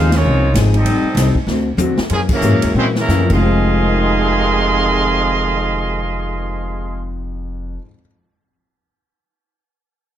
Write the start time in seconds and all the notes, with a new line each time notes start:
Already playing: D#2 F3 G#3 C4 D#4 F4 G#4 C5 F5
0.12 D#3 G#3 C#4 D#4 F4 C#5, snare, ride
0.24 C2 F3 C4 D#4 G#4
0.54 G#1 F3 C4 D#4 G#4, snare, hi-hat pedal, ride
0.73 G3 C4 D#4 G4 A4 D#5, ride
0.85 A1 A2 G3, ride
0.89 C4 D#4
1.03 muted upright bass stroke
1.15 C2 A2 G3 C4, snare, hi-hat pedal, ride
1.19 D#4
1.35 kick
1.47 D2 D3 A3 C4, snare
1.52 F#4
1.77 E2 D3 A3 C4 F#4, hi-hat pedal, high tom
1.97 muted upright bass stroke, snare
2.10 F#2 E3 G#3 A#3 C#4 G#4, ride
2.14 C#4
2.29 C#3 E3 F#3 A#3 C#4 E4 A#4, kick, crash
2.41 F#2 G#2 E3 G#3 A#3 C#4 F#4, hi-hat pedal
2.53 F#2
2.62 E2, ride
2.75 F#2 A#2 E3 A#3 C4 C#4 C5
2.79 G#3 E4
2.95 C#3 E3 A#3 C#4 E4, snare
3.00 F#3 A#4
3.08 F#2 E3 A#3 C#4, snare, hi-hat pedal
3.18 F2
3.24 F2 F3
3.30 F1 F2 C3 D#3 G#3 G#4 D#5 F5 C6, kick, crash
3.37 G#3 D#4
3.43 C4 G#4
3.81 A#4
3.88 D#5
3.96 G5
4.05 A#5
4.15 D#6
4.38 A#6